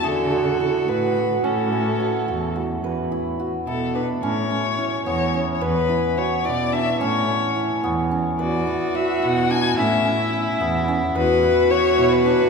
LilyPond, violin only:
\new Staff \with { instrumentName = "Violin" } { \time 5/8 \key a \major \tempo 4 = 108 a'4. b'4 | a'2 r8 | r4. a'8 b'8 | cis''4. cis''8. r32 cis''32 |
b'4 cis''8 d''8 e''8 | cis''4. r4 | d''4 e''8 fis''8 gis''8 | e''4. r4 |
b'4 cis''8. b'8. | }